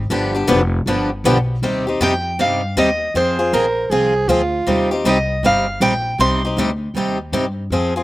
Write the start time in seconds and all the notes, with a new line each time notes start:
0.10 G1 D3 F3 B3 D4 G4
0.35 B3 D4 G4
0.47 F1 D3 F3 B3 D4 G4
0.86 G1 D3 F3 B3 D4 G4
1.24 B1 D3 F3 B3 D4 G4
1.62 D#2 C3 G3 C4 D#4 G4
1.87 C4 D#4 G4
2.00 F2 C3 G3 C4 D#4 G4 G5
2.39 G2 C3 G3 C4 D#4 G4 F5
2.76 D#2 C3 G3 C4 D#4 G4 D#5
3.14 F2 F3 C4 F4 G#4 C5
3.39 C4 F4 G#4
3.53 A#1 F3 C4 F4 G#4 A#4
3.86 C2 G#4 A#4
3.91 F3 C4 F4 G#4
4.28 D2 F3 C4 F4 G#4
4.67 D#2 C3 G3 C4 D#4 G4
4.91 C4 D#4 G4
5.05 C2 C3 G3 C4 D#4 G4
5.09 D#5
5.43 G1 C3 G3 C4 D#4 G4 F5
5.80 A#1 C3 G3 C4 D#4 G4 G5
6.19 C2 C3 G3 C4 D#4 G4 C6
6.45 C4 D#4 G4
6.57 D2 C3 G3 C4 D#4 G4
6.94 D#2 C3 G3 C4 D#4 G4
7.32 G2 C3 G3 C4 D#4 G4
7.70 F2 F3 C4 F4 G#4
7.96 C4 F4 G#4